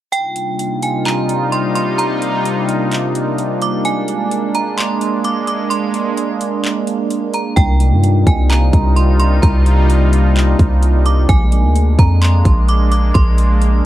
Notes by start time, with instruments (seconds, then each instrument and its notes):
0.12 analog synth pad C3 G3 A#3 D4 D#4 F4, synth bell G5, closed hi-hat
0.36 closed hi-hat
0.59 closed hi-hat
0.82 synth bell G#5, closed hi-hat
1.05 synth bell A#5, clap, closed hi-hat
1.29 closed hi-hat
1.52 synth bell C6, closed hi-hat
1.75 synth bell C6, closed hi-hat
1.98 synth bell A#5, closed hi-hat
2.22 closed hi-hat
2.45 closed hi-hat
2.69 closed hi-hat
2.92 clap, closed hi-hat
3.15 closed hi-hat
3.38 closed hi-hat
3.62 synth bell D6, closed hi-hat
3.85 analog synth pad G#3, synth bell G#5, closed hi-hat
4.08 closed hi-hat
4.31 closed hi-hat
4.55 synth bell A#5, closed hi-hat
4.78 synth bell C6, clap, closed hi-hat
5.01 closed hi-hat
5.24 synth bell D6, closed hi-hat
5.47 synth bell D6, closed hi-hat
5.70 synth bell C6, closed hi-hat
5.94 closed hi-hat
6.17 closed hi-hat
6.41 closed hi-hat
6.64 clap, closed hi-hat
6.87 closed hi-hat
7.10 closed hi-hat
7.34 synth bell A#5, closed hi-hat
7.56 808-style bass C2, analog synth pad C3 G3 D#4 F4, synth bell G5, kick, closed hi-hat
7.80 closed hi-hat
7.92 808-style bass G2
8.04 closed hi-hat
8.27 808-style bass C2, synth bell G#5, kick, closed hi-hat
8.50 synth bell A#5, clap, closed hi-hat
8.73 808-style bass C2, kick, closed hi-hat
8.96 synth bell C6, closed hi-hat
9.20 synth bell C6, closed hi-hat
9.42 808-style bass C2, synth bell A#5, kick, closed hi-hat
9.66 closed hi-hat
9.90 closed hi-hat
10.13 closed hi-hat
10.36 clap, closed hi-hat
10.59 808-style bass C2, kick, closed hi-hat
10.83 closed hi-hat
11.06 synth bell D6, closed hi-hat
11.29 808-style bass A#1, analog synth pad G#3 A#3 D4, synth bell G#5, kick, closed hi-hat
11.52 closed hi-hat
11.64 808-style bass D2
11.76 closed hi-hat
11.99 808-style bass F2, synth bell A#5, kick, closed hi-hat
12.22 synth bell C6, clap, closed hi-hat
12.45 808-style bass A#1, kick, closed hi-hat
12.69 synth bell D6, closed hi-hat
12.92 synth bell D6, closed hi-hat
13.14 808-style bass A#1, synth bell C6, kick, closed hi-hat
13.38 closed hi-hat
13.62 closed hi-hat